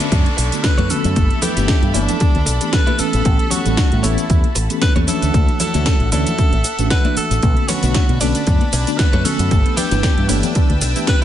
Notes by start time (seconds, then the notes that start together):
Already playing: D4 A4 B4 E5 B5 C#6, downlifter
0.00 closed hi-hat, cabasa
0.11 F#2 D3 A3 B3 C#4 F#4, kick, closed hi-hat, cabasa
0.26 closed hi-hat, high conga, cabasa
0.37 B1, muted clean electric guitar stroke, open hi-hat, cabasa
0.52 D3 A3 B3 F#4, muted clean electric guitar stroke, closed hi-hat, cabasa
0.64 B4, kick, snare, closed hi-hat, cabasa
0.78 F#2 D4 A4 B4 C#5, closed hi-hat, high conga, cabasa
0.90 D3 A3 B3 C#4 F#4 A4, open hi-hat, low conga, cabasa
1.04 F#2, muted clean electric guitar stroke, closed hi-hat, cabasa
1.16 G1 E3 A3 E5 A5, kick, closed hi-hat, high conga, cabasa
1.31 closed hi-hat, cabasa
1.42 E4 G4 A4 B4, open hi-hat, low conga, cabasa
1.57 G1 E3 A3 B3 D4 G4, snare, closed hi-hat, high conga, cabasa
1.68 kick, snare, closed hi-hat, cabasa
1.82 G2, closed hi-hat, cabasa
1.94 G1 E3 A3 B3 D4 E4 G4 A4 D5, open hi-hat, high conga, cabasa
2.09 closed hi-hat, low conga, cabasa
2.20 E3 A3 B3 D4 G4, kick, closed hi-hat, cabasa
2.35 D2, closed hi-hat, high conga, cabasa
2.46 B1, muted clean electric guitar stroke, open hi-hat, cabasa
2.61 E3 A3 B3 D4 G4, muted clean electric guitar stroke, closed hi-hat, cabasa
2.73 B4, kick, snare, closed hi-hat, cabasa
2.87 E4 G4 A4 B4, closed hi-hat, high conga, cabasa
2.98 E3 A3 B3 C#4 G4 A4 B4, muted fingered electric bass stroke, open hi-hat, cabasa
3.13 A1, closed hi-hat, cabasa
3.25 A1 E3 A3 C#4 G4, kick, closed hi-hat, high conga, cabasa
3.39 closed hi-hat, cabasa
3.50 C#4 F#4 G4 A4 C#5, open hi-hat, low conga, cabasa
3.65 A1 E3 G3 A3 B3 C#4, closed hi-hat, high conga, cabasa
3.77 kick, snare, closed hi-hat, cabasa
3.92 A2, closed hi-hat, cabasa
4.03 A1 E3 A3 B3 C#4 E4 G4 A4 C#5, open hi-hat, high conga, cabasa
4.18 closed hi-hat, cabasa
4.30 E2 E3 A3 B3 C#4 G4, kick, closed hi-hat, cabasa
4.44 closed hi-hat, high conga, cabasa
4.55 A1, muted clean electric guitar stroke, open hi-hat, cabasa
4.70 E3 A3 B3 C#4 G4, muted clean electric guitar stroke, closed hi-hat, cabasa
4.82 B4, kick, snare, closed hi-hat, cabasa
4.96 E2 C#4 G4 A4 C#5, closed hi-hat, high conga, cabasa
5.07 E3 A3 C#4 D4 E4 F#4 A4 C#5 E5 F#5, open hi-hat, low conga, cabasa
5.22 D2, closed hi-hat, cabasa
5.34 D2 A3 D4 C#5, kick, closed hi-hat, high conga, cabasa
5.49 closed hi-hat, cabasa
5.60 D4 E4 F#4 A4 C#5, open hi-hat, low conga, cabasa
5.74 D2 E3 A3 D4 F#4 C#5, snare, closed hi-hat, high conga, cabasa
5.86 kick, snare, closed hi-hat, cabasa
6.00 A1, closed hi-hat, cabasa
6.12 D2 E3 A3 C#4 D4 E4 F#4 A4 C#5 D5, open hi-hat, high conga, cabasa
6.27 closed hi-hat, low conga, cabasa
6.38 E3 A3 C#4 D4 F#4 E5, kick, closed hi-hat, cabasa
6.53 A1, closed hi-hat, high conga, cabasa
6.64 muted clean electric guitar stroke, open hi-hat, cabasa
6.78 A1 E3 A3 C#4 D4 F#4, muted clean electric guitar stroke, closed hi-hat, cabasa
6.90 E3 B4 F#5, kick, snare, closed hi-hat, cabasa
7.05 D4 E4 F#4 D5, closed hi-hat, high conga, cabasa
7.17 A4, muted fingered electric bass stroke, open hi-hat, cabasa
7.31 A1, muted clean electric guitar stroke, closed hi-hat, cabasa
7.43 B1 D3 A3 B3 C#4 F#4 A5 B5, kick, closed hi-hat, high conga, cabasa
7.57 B3, closed hi-hat, cabasa
7.68 C#4 D4 F#4 A4 B4 C#5, open hi-hat, ride, low conga, cabasa
7.82 B1 D3 A3 B3 D4 F#4 C#5, closed hi-hat, high conga, cabasa
7.94 F#4, kick, snare, closed hi-hat, cabasa
8.09 B2 D4, closed hi-hat, cabasa
8.20 B1 D3 A3 B3 C#4 D4 F#4 A4 B4 D5, open hi-hat, ride, high conga, cabasa
8.35 B3, closed hi-hat, cabasa
8.47 F#2 D3 A3 B3 C#4 F#4, kick, closed hi-hat, cabasa
8.61 B3, closed hi-hat, high conga, cabasa
8.73 B1 C#4, muted clean electric guitar stroke, open hi-hat, ride, cabasa
8.87 D3 A3 B3 D4 F#4, muted clean electric guitar stroke, closed hi-hat, cabasa
8.98 F#4 B4, kick, snare, closed hi-hat, cabasa
9.13 F#2 D4 A4 B4 C#5, closed hi-hat, high conga, cabasa
9.25 D3 A3 B3 C#4 F#4 A4, open hi-hat, ride, low conga, cabasa
9.39 F#2 B3, muted clean electric guitar stroke, closed hi-hat, cabasa
9.51 G1 A3 D4 B4 G5 E6, kick, closed hi-hat, high conga, cabasa
9.66 B3, closed hi-hat, cabasa
9.77 D4 E4 G4 A4 B4, open hi-hat, ride, low conga, cabasa
9.91 G1 E3 A3 B3 D4 E4 G4, snare, closed hi-hat, high conga, cabasa
10.03 G4, kick, snare, closed hi-hat, cabasa
10.18 G2 E4, closed hi-hat, cabasa
10.29 G1 E3 A3 B3 D4 E4 G4 A4 C#5, open hi-hat, ride, high conga, cabasa
10.43 B3, closed hi-hat, low conga, cabasa
10.55 E3 A3 B3 D4 G4, kick, closed hi-hat, cabasa
10.70 D2 B3, closed hi-hat, high conga, cabasa
10.81 B1 D4, muted clean electric guitar stroke, open hi-hat, ride, cabasa
10.96 E3 A3 B3 D4 E4 G4, muted clean electric guitar stroke, closed hi-hat, cabasa
11.07 G4 B4, kick, snare, closed hi-hat, cabasa